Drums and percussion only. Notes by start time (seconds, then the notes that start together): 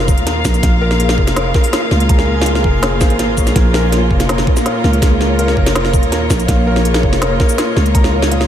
0.08 kick, shaker
0.18 closed hi-hat
0.27 snare, closed hi-hat
0.45 kick, snare, shaker
0.54 closed hi-hat, shaker
0.63 kick, snare, closed hi-hat
0.91 snare
1.00 closed hi-hat
1.09 snare
1.18 kick
1.27 snare, closed hi-hat
1.36 snare, closed hi-hat
1.54 kick, snare
1.64 closed hi-hat, shaker
1.73 snare, closed hi-hat
1.91 snare
2.00 closed hi-hat
2.09 kick, closed hi-hat
2.19 snare
2.42 snare
2.46 closed hi-hat
2.55 snare
2.64 kick
2.83 snare, closed hi-hat
3.01 kick, snare, shaker
3.10 closed hi-hat
3.19 snare, closed hi-hat
3.37 kick, shaker
3.47 snare, closed hi-hat, shaker
3.56 kick, snare, closed hi-hat
3.74 snare
3.92 snare, closed hi-hat
4.11 kick
4.20 snare, closed hi-hat
4.29 snare, closed hi-hat
4.38 snare
4.47 kick
4.57 snare, closed hi-hat, shaker
4.66 snare, closed hi-hat
4.84 snare
4.93 closed hi-hat
5.02 kick, snare, closed hi-hat
5.21 snare
5.39 closed hi-hat
5.48 snare
5.57 kick
5.66 snare, closed hi-hat
5.75 snare, closed hi-hat
5.85 snare
5.94 kick, shaker
6.03 closed hi-hat
6.12 snare, closed hi-hat
6.30 kick, snare, shaker
6.40 closed hi-hat, shaker
6.48 kick, snare, closed hi-hat
6.76 snare
6.85 closed hi-hat
6.94 snare
7.03 kick
7.13 snare, closed hi-hat
7.22 snare, closed hi-hat
7.40 kick, snare
7.49 closed hi-hat, shaker
7.58 snare, closed hi-hat
7.77 snare
7.86 closed hi-hat
7.95 kick, closed hi-hat
8.04 snare
8.22 snare
8.32 closed hi-hat
8.41 snare